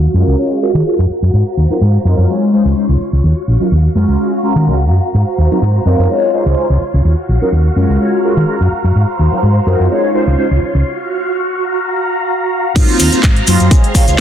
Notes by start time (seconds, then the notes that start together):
Already playing: F#4 F5 C#6
0.14 F#2 G#3 C#4 F4 F#4 A#4 A#5
0.27 C#2
0.38 G#3 C#4 F4 F#4 C#5
0.61 G#3 C#4 F4 F#4 A#4
0.74 D#3 G#3 C#4 F4 F#4 A#4
0.85 G#3 C#4 F4 F#4 A#4
0.98 F#2
1.10 muted fingered electric bass stroke
1.22 F#2
1.33 G#2 C5 F5
1.57 D#2
1.69 F#3 C4 D#4 F4 A#4
1.81 G#2
2.04 F#2 F#3 C4 D#4 F4 A#4
2.18 F#2
2.28 G#3 C#4 D#4 F4 C#5 C6
2.52 G#3 C#4 D#4 F4 C5
2.65 C#2 G#3 C#4 D#4 F4 C5
2.76 G#3 C#4 D#4 F4 C5
2.89 C#2
3.13 C#2
3.24 D#2 F#4 F5 C#6
3.48 A#1
3.59 F#3 C#4 D#4 F4 A#4
3.72 D#2
3.94 F#2 G#3 C#4 F4 F#4 A#4 A#5
4.08 C#2
4.18 G#3 C#4 F4 F#4 C#5
4.42 G#3 C#4 F4 F#4 A#4
4.55 D#3 G#3 C#4 F4 F#4 A#4
4.66 C#2 G#3 C#4 F4 F#4 A#4
4.90 F#2
5.14 G#2 C5 A#5
5.38 D#2
5.50 F#3 C4 D#4 F4 A#4
5.62 G#2
5.85 F#2 F#3 C4 D#4 F4 A#4
5.98 F#2
6.09 G#3 C#4 D#4 F4 C#5 C6
6.33 G#3 C#4 D#4 F4 C5
6.45 C#2 G#3 D#4 C5
6.57 G#3 C#4 D#4 F4 C5
6.70 C#2
6.94 C#2
7.04 D#2 F#4 F5 C#6
7.29 A#1
7.41 F#3 C#4 D#4 F4 A#4
7.52 D#2
7.76 F#2 G#3 C#4 F4 F#4 A#4 A#5
7.89 C#2
7.99 G#3 C#4 F4 F#4 C#5
8.23 G#3 C#4 F4 F#4 A#4
8.36 D#3 G#3 C#4 F4 F#4 A#4
8.47 G#3 C#4 F4 F#4 A#4
8.60 F#2
8.72 muted fingered electric bass stroke
8.84 F#2
8.95 G#2 C5
9.19 D#2
9.31 F#3 C4 D#4 F4 A#4
9.43 G#2
9.66 F#2 F#3 C4 D#4 F4 A#4
9.80 F#2
9.90 G#3 C#4 D#4 F4 C#5 C6
10.13 G#3 C#4 D#4 F4 C5
10.26 C#2 G#3 C#4 D#4 F4 C5
10.37 G#3 C#4 D#4 F4 C5
10.51 C#2
10.75 C#2
10.85 F#4 F5 C#6
11.57 F5 A#5
12.75 G#2 F#3 A#3 C4 D#4 F4 C5 F5 A#5, kick, closed hi-hat, crash, maracas
12.89 closed hi-hat
12.99 D#2, open hi-hat, maracas
13.12 F#3 A#3 C4 D#4 F4, closed hi-hat, maracas
13.23 G#2, kick, clap, closed hi-hat, maracas
13.36 closed hi-hat
13.47 F#2 F#3 A#3 C4 D#4 F4, open hi-hat, maracas
13.60 F#2, closed hi-hat, maracas
13.71 G#3 C4 C#4 D#4 G#4 C#5 F5 C6, kick, closed hi-hat, maracas
13.84 closed hi-hat
13.95 G#3 C4 C#4 D#4 F4, kick, open hi-hat, maracas
14.07 C#2 G#3 C4 C#4 D#4 F4, closed hi-hat, maracas